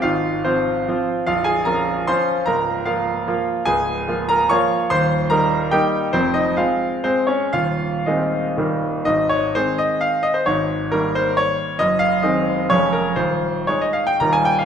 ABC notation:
X:1
M:3/4
L:1/16
Q:1/4=138
K:Bbdor
V:1 name="Grand piano"
[Ff]4 [Cc]6 z2 | [Ff]2 [Aa]2 [Bb]4 [cc']4 | [Bb]4 [Ff]6 z2 | [K:Ab] [Aa]6 [Bb]2 [dd']4 |
[cc']4 [Bb]4 [Gg]4 | [Cc]2 [Ee]2 [Ff]4 [Cc]2 [Dd]2 | [Ff]4 [Ee]6 z2 | e2 d2 c2 e2 f2 e c |
d4 B2 c2 d4 | e2 f2 e4 d2 B2 | c4 d e f g b a g f |]
V:2 name="Grand piano" clef=bass
[A,,,A,,]4 [F,F]4 [F,CF]4 | [B,,,,B,,,]4 [F,DF]4 [F,DF]4 | [D,,,D,,]4 [F,B,]4 [F,B,F]4 | [K:Ab] [D,,,D,,]4 [F,B,F]4 [F,B,F]4 |
[E,,,E,,]4 [G,B,E]4 [G,B,E]4 | [F,,,F,,]4 [A,C]4 A,4 | [E,,,E,,]4 [E,A,C]4 [E,,,E,,E,G,B,]4 | [A,,,A,,]4 [E,A,C]8 |
[A,,,A,,]4 [E,G,B,]8 | [_G,,,_G,,]4 [E,A,C]4 [F,,,F,,F,A,D]4 | [E,,,E,,]4 [A,E]4 [E,,,E,,G,B,E]4 |]